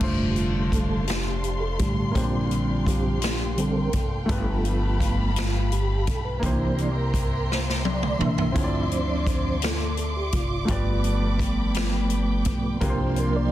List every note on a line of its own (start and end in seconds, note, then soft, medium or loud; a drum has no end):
0.00 1.76 F1 medium
0.00 1.04 D3 soft
0.00 1.04 G3 soft
0.00 2.10 A3 medium
0.00 1.05 A3 medium
0.00 2.11 D4 medium
0.00 2.12 F4 medium
0.00 2.13 C5 medium
0.00 4.25 D5 medium
0.00 2.13 F5 medium
0.00 2.13 A5 medium
0.00 4.25 C6 medium
0.00 kick loud
0.00 crash medium
0.29 0.37 G4 medium
0.36 0.53 F4 medium
0.36 closed hi-hat soft
0.72 1.05 A4 medium
0.72 kick medium
0.72 closed hi-hat medium
1.08 1.63 G4 medium
1.08 snare medium
1.08 closed hi-hat medium
1.44 closed hi-hat soft
1.60 1.79 A4 medium
1.79 2.13 A1 medium
1.79 2.12 D3 soft
1.79 2.13 G3 soft
1.79 2.13 A3 soft
1.79 2.13 G4 medium
1.79 kick medium
1.79 closed hi-hat medium
2.11 3.18 A#2 medium
2.11 3.18 D3 soft
2.11 4.23 A#3 soft
2.11 2.21 C#4 soft
2.11 2.48 F4 medium
2.15 3.90 A#1 medium
2.15 3.18 G3 soft
2.15 3.19 C4 medium
2.15 4.25 G4 medium
2.15 4.26 C5 medium
2.15 4.27 F5 medium
2.15 6.39 G5 medium
2.15 kick medium
2.15 closed hi-hat medium
2.20 4.28 D4 medium
2.51 closed hi-hat soft
2.86 3.61 G4 medium
2.86 kick medium
2.86 closed hi-hat medium
3.22 snare medium
3.22 closed hi-hat medium
3.57 3.90 D3 soft
3.57 3.90 G3 soft
3.57 3.90 C4 medium
3.57 3.76 A4 medium
3.57 closed hi-hat soft
3.77 3.95 A#4 loud
3.93 4.26 F1 medium
3.93 4.98 A4 medium
3.93 kick medium
3.93 closed hi-hat medium
4.26 6.03 G1 loud
4.26 5.32 G2 medium
4.26 5.32 F3 soft
4.26 6.37 A3 medium
4.26 5.32 A3 soft
4.26 5.32 B3 medium
4.26 6.38 F4 medium
4.26 6.39 G4 medium
4.26 6.40 F5 medium
4.26 6.40 A5 medium
4.26 6.41 B5 medium
4.26 kick loud
4.26 closed hi-hat medium
4.31 6.40 B4 medium
4.65 closed hi-hat soft
5.00 kick medium
5.00 closed hi-hat medium
5.36 5.73 F4 medium
5.36 snare loud
5.36 closed hi-hat medium
5.72 6.08 G4 medium
5.72 closed hi-hat soft
6.07 6.40 B1 medium
6.07 6.25 A4 medium
6.07 kick medium
6.07 closed hi-hat medium
6.25 6.43 B4 medium
6.39 8.17 C2 loud
6.39 7.45 C3 medium
6.39 6.89 E3 medium
6.39 8.50 A#3 medium
6.39 6.90 A#3 soft
6.39 6.90 D4 soft
6.39 6.49 D#4 soft
6.39 8.52 G4 medium
6.39 10.64 E5 medium
6.39 8.53 G5 medium
6.39 8.54 A#5 medium
6.39 10.64 C6 medium
6.39 kick loud
6.39 closed hi-hat medium
6.44 6.80 C5 medium
6.44 8.53 C5 medium
6.48 8.52 E4 medium
6.78 6.97 D5 medium
6.78 closed hi-hat soft
6.96 7.13 A#4 medium
7.14 7.50 A#4 medium
7.14 kick medium
7.14 closed hi-hat medium
7.50 7.83 C5 medium
7.50 snare medium
7.70 snare soft
7.85 8.21 D5 medium
7.85 high tom medium
8.03 mid tom medium
8.18 8.53 C2 medium
8.18 8.51 E3 soft
8.18 8.52 A#3 soft
8.18 8.52 D4 soft
8.18 8.94 E5 loud
8.18 mid tom medium
8.38 floor tom medium
8.52 10.29 D2 medium
8.52 9.58 D3 soft
8.52 9.58 F3 soft
8.52 10.63 C4 medium
8.52 9.58 C4 soft
8.52 9.58 D4 medium
8.52 10.64 E4 medium
8.52 10.65 F4 medium
8.52 12.78 D5 medium
8.52 12.78 D6 medium
8.52 kick loud
8.52 closed hi-hat medium
8.57 8.63 C#5 soft
8.64 10.69 D5 medium
8.91 9.10 C5 medium
8.91 closed hi-hat soft
9.09 9.28 D5 medium
9.27 9.63 C5 medium
9.27 kick medium
9.27 closed hi-hat medium
9.62 9.98 A4 medium
9.62 snare loud
9.62 closed hi-hat medium
9.97 10.17 A4 medium
9.97 closed hi-hat soft
10.17 10.34 G4 medium
10.32 10.66 F1 medium
10.32 10.69 F4 medium
10.32 kick medium
10.32 closed hi-hat medium
10.65 12.42 G1 loud
10.65 11.71 G2 medium
10.65 12.77 F3 medium
10.65 10.73 A3 soft
10.65 12.77 F4 medium
10.65 kick loud
10.65 closed hi-hat medium
10.69 12.78 A3 soft
10.69 12.78 B3 medium
10.69 12.79 B3 medium
10.69 11.02 F4 medium
10.69 12.78 G4 medium
10.69 12.79 D5 medium
10.69 13.52 G5 medium
10.69 12.80 B5 medium
11.04 closed hi-hat soft
11.39 kick medium
11.39 closed hi-hat medium
11.74 snare loud
11.74 closed hi-hat medium
12.10 closed hi-hat soft
12.45 12.79 B1 medium
12.45 kick medium
12.45 closed hi-hat medium
12.81 13.52 C2 loud
12.81 13.52 C3 medium
12.81 13.52 F3 medium
12.81 13.52 A#3 medium
12.81 13.52 D4 medium
12.81 13.52 F4 medium
12.81 13.52 G4 medium
12.81 13.01 A#4 medium
12.81 12.89 B4 soft
12.81 13.52 F5 medium
12.81 13.52 C6 medium
12.81 kick loud
12.81 closed hi-hat medium
12.90 13.52 C5 medium
13.00 13.18 C5 medium
13.16 13.37 A#4 medium
13.16 closed hi-hat soft
13.36 13.52 D5 loud